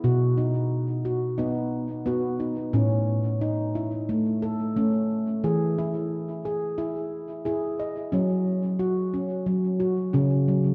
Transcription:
X:1
M:4/4
L:1/16
Q:"Swing 16ths" 1/4=89
K:F#dor
V:1 name="Handpan"
F2 D4 F2 D4 F2 D2 | C4 D2 E4 A2 C4 | G2 E4 G2 E4 G2 d2 | C4 F2 C4 F2 C4 |]
V:2 name="Handpan" clef=bass
B,,8 B,2 z2 B,4 | A,,8 A,2 z2 A,4 | E,8 z4 E4 | F,8 F,4 C, z F,2 |]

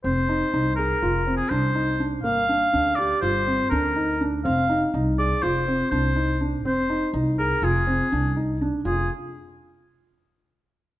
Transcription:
X:1
M:9/8
L:1/16
Q:3/8=82
K:Fdor
V:1 name="Oboe"
c6 B4- B A c4 z2 | f6 d2 c4 B4 z2 | f4 z2 d2 c4 c4 z2 | c4 z2 B2 A6 z4 |
A2 z16 |]
V:2 name="Felt piano"
C2 E2 E2 A2 F2 C2 D2 E2 D2 | B,2 D2 D2 G2 F2 C2 D2 E2 D2 | C2 E2 E2 A2 F2 C2 D2 E2 D2 | C2 E2 E2 A2 F2 C2 D2 E2 D2 |
F2 z16 |]
V:3 name="Upright bass" clef=bass
F,,,4 C,,4 F,,,4 C,,6 | G,,,4 D,,4 G,,,4 D,,6 | F,,,4 C,,4 F,,,4 C,,6 | F,,,4 C,,4 F,,,4 C,,6 |
F,,,2 z16 |]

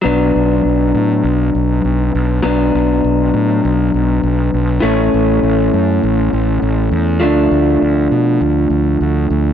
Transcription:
X:1
M:4/4
L:1/8
Q:1/4=101
K:Bdor
V:1 name="Clean electric guitar"
[F,B,D]8 | [F,B,D]8 | [E,A,C]8 | [=F,A,D]8 |]
V:2 name="Fingered electric bass" clef=bass
B,,, B,,, B,,, A,, B,,, B,,, B,,, B,,, | B,,, B,,, B,,, A,, B,,, B,,, B,,, B,,, | A,,, A,,, A,,, F,, A,,, A,,, A,,, E,, | D,, D,, D,, B,, D,, D,, D,, D,, |]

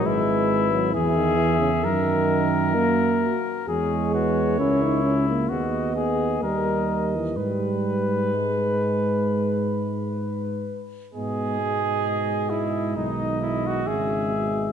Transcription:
X:1
M:4/4
L:1/16
Q:1/4=66
K:G#m
V:1 name="Flugelhorn"
e4 e8- e2 z2 | c8 d4 d4 | B12- B2 z2 | G6 E2 D2 E F G4 |]
V:2 name="French horn"
B4 G4 A4 F2 F2 | G2 B2 A2 z2 G2 G2 A4 | B12- B2 z2 | B,2 G,8- G,2 G,4 |]
V:3 name="Trumpet"
E4 G4 A8 | G2 F2 E4 F2 G2 A2 z2 | B12- B2 z2 | d8 d4 e4 |]
V:4 name="Euphonium" clef=bass
G,3 F, E, D, E, C, D,4 A,3 z | G,4 C D C A, B,4 =G,3 E, | =G,4 ^G,8 z4 | B,,8 D,4 C,2 B,,2 |]
V:5 name="Tuba" clef=bass
G,,,4 E,,4 F,,6 z2 | E,,4 C,,4 D,,4 D,,4 | G,,12- G,,2 z2 | G,,8 B,,,4 G,,,4 |]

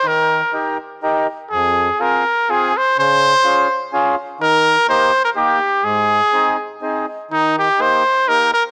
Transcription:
X:1
M:3/4
L:1/16
Q:"Swing" 1/4=124
K:Ab
V:1 name="Trumpet"
B4 z8 | A4 B4 A2 c2 | c8 z4 | B4 c3 B G4 |
A8 z4 | [K:Eb] E2 G2 c4 B2 B2 |]
V:2 name="Accordion"
E,4 [EGB]2 z2 [EGB]2 z2 | F,,4 [CFA]2 z2 [CFA]2 z2 | D,4 [DFA]2 z2 [DFA]2 z2 | E,4 [B,EG]2 z2 [B,EG]2 z2 |
A,,4 [CEA]2 z2 [CEA]2 z2 | [K:Eb] E,4 [B,EG]2 z2 [B,EG]2 z2 |]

